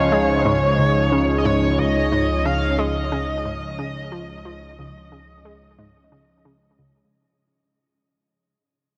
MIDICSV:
0, 0, Header, 1, 5, 480
1, 0, Start_track
1, 0, Tempo, 666667
1, 1287, Time_signature, 4, 2, 24, 8
1, 6463, End_track
2, 0, Start_track
2, 0, Title_t, "Analog synth lead"
2, 0, Program_c, 0, 81
2, 0, Note_on_c, 0, 73, 107
2, 991, Note_off_c, 0, 73, 0
2, 995, Note_on_c, 0, 75, 69
2, 1044, Note_on_c, 0, 73, 97
2, 1054, Note_off_c, 0, 75, 0
2, 1285, Note_on_c, 0, 75, 106
2, 1296, Note_off_c, 0, 73, 0
2, 1765, Note_on_c, 0, 77, 103
2, 1775, Note_off_c, 0, 75, 0
2, 2005, Note_on_c, 0, 75, 100
2, 2015, Note_off_c, 0, 77, 0
2, 4646, Note_off_c, 0, 75, 0
2, 6463, End_track
3, 0, Start_track
3, 0, Title_t, "Analog synth pad"
3, 0, Program_c, 1, 89
3, 0, Note_on_c, 1, 53, 72
3, 0, Note_on_c, 1, 56, 78
3, 0, Note_on_c, 1, 61, 73
3, 0, Note_on_c, 1, 63, 73
3, 0, Note_on_c, 1, 73, 89
3, 5097, Note_off_c, 1, 53, 0
3, 5097, Note_off_c, 1, 56, 0
3, 5097, Note_off_c, 1, 61, 0
3, 5097, Note_off_c, 1, 63, 0
3, 5097, Note_off_c, 1, 73, 0
3, 6463, End_track
4, 0, Start_track
4, 0, Title_t, "Synth arpeggio sound"
4, 0, Program_c, 2, 84
4, 0, Note_on_c, 2, 49, 79
4, 75, Note_off_c, 2, 49, 0
4, 86, Note_on_c, 2, 56, 75
4, 261, Note_off_c, 2, 56, 0
4, 326, Note_on_c, 2, 44, 102
4, 431, Note_off_c, 2, 44, 0
4, 567, Note_on_c, 2, 37, 76
4, 795, Note_off_c, 2, 37, 0
4, 807, Note_on_c, 2, 49, 80
4, 1035, Note_off_c, 2, 49, 0
4, 1046, Note_on_c, 2, 44, 103
4, 1221, Note_off_c, 2, 44, 0
4, 1286, Note_on_c, 2, 37, 86
4, 1391, Note_off_c, 2, 37, 0
4, 1526, Note_on_c, 2, 44, 80
4, 1631, Note_off_c, 2, 44, 0
4, 1767, Note_on_c, 2, 49, 76
4, 1995, Note_off_c, 2, 49, 0
4, 2006, Note_on_c, 2, 56, 77
4, 2181, Note_off_c, 2, 56, 0
4, 2247, Note_on_c, 2, 49, 87
4, 2351, Note_off_c, 2, 49, 0
4, 2487, Note_on_c, 2, 44, 77
4, 2661, Note_off_c, 2, 44, 0
4, 2726, Note_on_c, 2, 49, 80
4, 2955, Note_off_c, 2, 49, 0
4, 2966, Note_on_c, 2, 53, 81
4, 3141, Note_off_c, 2, 53, 0
4, 3206, Note_on_c, 2, 53, 85
4, 3311, Note_off_c, 2, 53, 0
4, 3447, Note_on_c, 2, 37, 83
4, 3552, Note_off_c, 2, 37, 0
4, 3686, Note_on_c, 2, 49, 78
4, 3914, Note_off_c, 2, 49, 0
4, 3926, Note_on_c, 2, 56, 75
4, 4101, Note_off_c, 2, 56, 0
4, 4165, Note_on_c, 2, 44, 104
4, 4271, Note_off_c, 2, 44, 0
4, 4406, Note_on_c, 2, 49, 78
4, 4635, Note_off_c, 2, 49, 0
4, 4646, Note_on_c, 2, 49, 81
4, 4821, Note_off_c, 2, 49, 0
4, 4887, Note_on_c, 2, 37, 81
4, 5061, Note_off_c, 2, 37, 0
4, 6463, End_track
5, 0, Start_track
5, 0, Title_t, "Analog synth bass"
5, 0, Program_c, 3, 38
5, 0, Note_on_c, 3, 37, 86
5, 5103, Note_off_c, 3, 37, 0
5, 6463, End_track
0, 0, End_of_file